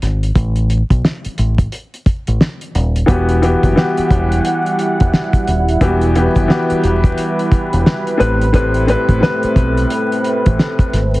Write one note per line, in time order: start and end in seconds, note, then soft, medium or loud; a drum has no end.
0.02 0.30 G#1 medium
0.02 snare soft
0.02 closed hi-hat medium
0.23 closed hi-hat medium
0.35 0.81 A1 loud
0.35 kick loud
0.35 closed hi-hat loud
0.56 closed hi-hat soft
0.70 closed hi-hat medium
0.90 1.01 B1 medium
0.90 kick medium
0.90 closed hi-hat medium
1.05 snare loud
1.25 muted fingered electric bass stroke soft
1.25 closed hi-hat medium
1.38 1.66 A1 medium
1.38 closed hi-hat medium
1.58 kick loud
1.58 closed hi-hat medium
1.72 closed hi-hat loud
1.94 closed hi-hat soft
2.06 kick medium
2.06 closed hi-hat medium
2.27 2.38 A1 medium
2.27 closed hi-hat medium
2.41 snare loud
2.61 closed hi-hat soft
2.75 3.03 D#1 medium
2.75 closed hi-hat medium
2.96 closed hi-hat medium
3.06 3.54 E1 loud
3.06 3.39 E3 medium
3.06 8.15 G3 medium
3.06 3.40 B3 medium
3.06 8.15 E4 medium
3.06 3.40 F#4 medium
3.06 3.40 G4 loud
3.06 5.78 F#5 medium
3.06 kick loud
3.06 closed hi-hat loud
3.29 closed hi-hat soft
3.42 3.74 E3 medium
3.42 3.75 B3 medium
3.42 3.75 F#4 medium
3.42 3.75 G4 loud
3.42 closed hi-hat medium
3.63 3.74 F#1 medium
3.63 kick medium
3.63 closed hi-hat medium
3.76 5.49 E3 medium
3.76 5.49 B3 medium
3.76 5.50 F#4 medium
3.76 5.50 G4 loud
3.76 snare loud
3.97 muted fingered electric bass stroke soft
3.97 closed hi-hat medium
4.11 4.39 E1 medium
4.11 kick loud
4.11 closed hi-hat medium
4.32 closed hi-hat medium
4.45 closed hi-hat loud
4.66 closed hi-hat soft
4.79 closed hi-hat medium
5.00 5.11 E1 medium
5.00 kick loud
5.00 closed hi-hat medium
5.13 snare loud
5.33 kick medium
5.33 closed hi-hat soft
5.47 5.76 D#1 medium
5.47 closed hi-hat medium
5.68 closed hi-hat medium
5.81 6.27 E1 loud
5.81 6.13 E3 loud
5.81 6.14 B3 medium
5.81 6.14 F#4 medium
5.81 6.14 G4 loud
5.81 11.20 B4 medium
5.81 kick loud
5.81 closed hi-hat loud
6.01 closed hi-hat soft
6.16 6.47 E3 medium
6.16 6.47 B3 medium
6.16 6.48 F#4 medium
6.16 6.49 G4 loud
6.16 closed hi-hat medium
6.36 6.47 F#1 medium
6.36 kick medium
6.36 closed hi-hat medium
6.48 8.19 E3 loud
6.48 8.20 B3 medium
6.48 8.20 F#4 medium
6.48 8.20 G4 loud
6.48 snare loud
6.70 muted fingered electric bass stroke soft
6.70 closed hi-hat medium
6.84 7.12 E1 medium
6.84 closed hi-hat medium
7.04 kick loud
7.04 closed hi-hat medium
7.18 closed hi-hat loud
7.39 closed hi-hat soft
7.52 kick medium
7.52 closed hi-hat medium
7.73 7.84 E1 medium
7.73 closed hi-hat medium
7.86 snare loud
8.07 closed hi-hat soft
8.18 8.94 A1 medium
8.18 8.42 A2 medium
8.18 8.42 G3 medium
8.18 11.20 A3 medium
8.18 8.43 C4 medium
8.18 11.20 C4 medium
8.18 8.43 B4 loud
8.18 closed hi-hat medium
8.41 closed hi-hat medium
8.53 8.85 A2 loud
8.53 8.86 G3 medium
8.53 8.86 C4 medium
8.53 8.86 B4 loud
8.53 kick loud
8.53 closed hi-hat loud
8.74 closed hi-hat soft
8.87 9.19 A2 loud
8.87 9.20 G3 medium
8.87 9.20 C4 medium
8.87 9.21 B4 loud
8.87 closed hi-hat medium
9.09 9.20 A1 medium
9.09 kick medium
9.09 closed hi-hat medium
9.20 10.94 A2 medium
9.20 10.95 G3 medium
9.20 10.95 C4 medium
9.20 10.95 B4 loud
9.20 snare loud
9.43 muted fingered electric bass stroke soft
9.43 closed hi-hat medium
9.56 9.84 B1 medium
9.56 kick loud
9.56 closed hi-hat medium
9.77 closed hi-hat medium
9.90 closed hi-hat loud
10.12 closed hi-hat soft
10.24 closed hi-hat medium
10.46 10.57 A1 medium
10.46 kick medium
10.46 closed hi-hat medium
10.59 snare loud
10.79 kick medium
10.79 closed hi-hat soft
10.93 11.20 G#1 medium
10.93 snare soft
10.93 closed hi-hat medium
11.14 closed hi-hat medium